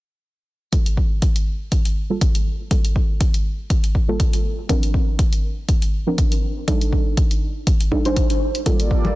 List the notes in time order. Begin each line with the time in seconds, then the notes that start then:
0.72 G3 A#3 F4 A4, kick, closed hi-hat
0.86 closed hi-hat
0.97 kick
1.22 kick, closed hi-hat
1.36 closed hi-hat
1.72 kick, closed hi-hat
1.85 closed hi-hat
2.10 G3 A#3 F4 A4
2.21 kick, closed hi-hat
2.35 closed hi-hat
2.71 G3 A#3 F4 A4, kick, closed hi-hat
2.85 closed hi-hat
2.96 kick
3.21 kick, closed hi-hat
3.34 closed hi-hat
3.70 kick, closed hi-hat
3.84 closed hi-hat
3.95 kick
4.08 G3 A#3 F4 A4
4.20 kick, closed hi-hat
4.33 closed hi-hat
4.69 F3 C4 D4 A#4, kick, closed hi-hat
4.83 closed hi-hat
4.94 kick
5.19 kick, closed hi-hat
5.33 closed hi-hat
5.69 kick, closed hi-hat
5.82 closed hi-hat
6.07 F3 C4 D4 A#4
6.18 kick, closed hi-hat
6.32 closed hi-hat
6.68 G3 D4 D#4 A4, kick, closed hi-hat
6.81 closed hi-hat
6.93 kick
7.17 kick, closed hi-hat
7.31 closed hi-hat
7.67 kick, closed hi-hat
7.81 closed hi-hat
7.92 G3 D4 D#4 A4, kick
8.05 G3 D4 D#4 C5, closed hi-hat
8.16 kick, closed hi-hat
8.30 closed hi-hat
8.55 closed hi-hat
8.66 G3 A#3 F4 A4 D5, kick, closed hi-hat
8.80 closed hi-hat
8.91 kick
9.05 high conga